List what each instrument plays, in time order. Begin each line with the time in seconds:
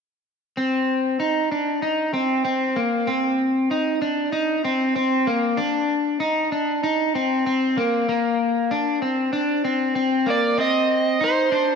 0.57 clean electric guitar C4
1.20 clean electric guitar D#4
1.52 clean electric guitar D4
1.82 clean electric guitar D#4
2.14 clean electric guitar C4
2.45 clean electric guitar C4
2.76 clean electric guitar A#3
3.07 clean electric guitar C4
3.71 clean electric guitar D#4
4.02 clean electric guitar D4
4.32 clean electric guitar D#4
4.65 clean electric guitar C4
4.96 clean electric guitar C4
5.27 clean electric guitar A#3
5.57 clean electric guitar D4
6.20 clean electric guitar D#4
6.52 clean electric guitar D4
6.83 clean electric guitar D#4
7.15 clean electric guitar C4
7.46 clean electric guitar C4
7.77 clean electric guitar A#3
8.09 clean electric guitar A#3
8.71 clean electric guitar D4
9.02 clean electric guitar C4
9.33 clean electric guitar D4
9.65 clean electric guitar C4
9.95 clean electric guitar C4
10.26 clean electric guitar A#3, electric slide guitar D5
10.58 clean electric guitar C4, electric slide guitar D#5
11.21 clean electric guitar D#4, electric slide guitar C5
11.52 clean electric guitar D4